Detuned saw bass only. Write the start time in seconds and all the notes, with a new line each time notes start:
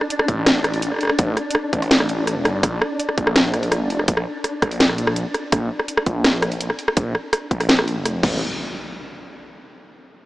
0.28 A1
1.19 A1
1.73 A1
2.36 E1
2.45 G1
2.63 A#1
3.18 A#1
3.81 F1
4.08 A#1
4.62 A#1
5.52 A#1
6.07 A#1
6.97 A#1
7.51 A#1
7.96 F1
8.23 A1